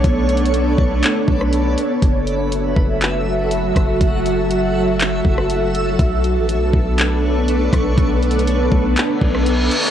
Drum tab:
HH |x-----x-x-x-x-----------x-----------x-----x-----|x-----x-----x-----------x-----------x-----x-----|x-----x-----x-----------x-----------x-----x-----|x-----x-----x-----------x-----------x-----x-----|
CP |------------------------x-----------------------|------------------------x-----------------------|------------------------x-----------------------|------------------------x-----------------------|
SD |---------------------------------r--------------|------------------------------------------r-----|---------------------------------r--------------|------------------------------------------r-----|
BD |o-----------------o-----------o-----------------|o-----------------o-----------------------o-----|o-----------------------------o-----------------|o-----------------o-----------------------o-----|

HH |x-----x-x-x-x-----------x-----------x-----x-----|
CP |------------------------x-----------------------|
SD |---------------------------------r--------------|
BD |o-----------------o-----------o-----------------|